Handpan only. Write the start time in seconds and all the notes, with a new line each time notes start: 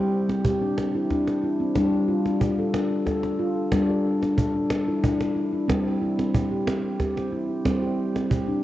Already playing: G3 G4
0.29 C4
0.45 G4
0.62 D4
0.95 E4
1.10 D4
1.43 E4
1.60 C4
1.76 G3 D4
2.08 F4
2.25 D4
2.59 A4
2.74 D4
3.06 A4
3.24 D4
3.39 F4
3.72 G3 D4
3.90 A4
4.22 D4
4.37 A4
4.56 D4
4.88 E4
5.03 D4
5.36 E4
5.53 D4
5.68 G3 C4
6.02 E4
6.19 C4
6.51 G4
6.67 C4
7.00 G4
7.16 C4
7.32 E4
7.65 G3 C4
7.82 G4
8.15 C4
8.30 G4
8.48 D4